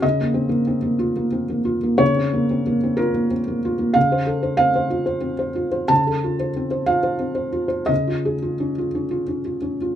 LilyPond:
\new Staff \with { instrumentName = "Felt piano" } { \time 6/8 \key f \phrygian \tempo 4. = 61 << { ees''2. | des''4. bes'8 r4 | f''4 f''2 | a''4. f''4. |
ees''2. | } \\ { des16 bes16 c'16 bes16 c'16 bes16 f'16 bes16 c'16 bes16 f'16 bes16 | des16 c'16 bes16 c'16 bes16 c'16 f'16 bes16 c'16 bes16 f'16 bes16 | des16 c''16 a'16 c''16 c'16 c''16 f'16 c''16 c'16 c''16 f'16 c''16 | des16 a'16 f'16 c''16 c'16 c''16 f'16 c''16 c'16 c''16 f'16 c''16 |
des16 f'16 aes'16 f'16 des'16 f'16 des'16 f'16 des'16 f'16 des'16 f'16 | } >> }